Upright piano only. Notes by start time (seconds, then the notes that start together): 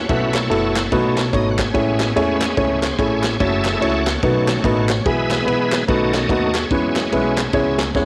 0.09 B2 A3 B3 E4 F#4 B4
0.50 A3 B3 E4 F#4 A4
0.92 B2 A3 B3 D#4 F#4 B4
1.33 A3 B3 D#4 F#4 C#5
1.74 A2 A3 C#4 E4 G#4 C#5
2.16 A3 C#4 E4 G#4 C#5
2.57 A3 C#4 E4 G#4 C#5
2.98 A3 C#4 E4 G#4 C#5
3.40 A3 C#4 E4 F#4 C#5
3.81 A3 C#4 E4 F#4 C#5
4.23 B2 A3 B3 D#4 F#4 B4
4.64 A3 B3 D#4 F#4 B4
5.05 B2 B3 E4 G#4
5.46 B3 E4 B4
5.88 B2 A3 B3 D#4 F#4 B4
6.29 A3 B3 D#4 F#4 B4
6.71 E3 G#3 B3 C#4 E4 B4
7.12 G#3 B3 C#4 E4 B4
7.53 G#3 B3 C#4 E4 C#5
7.95 G#3 B3 C#4 E4 C#5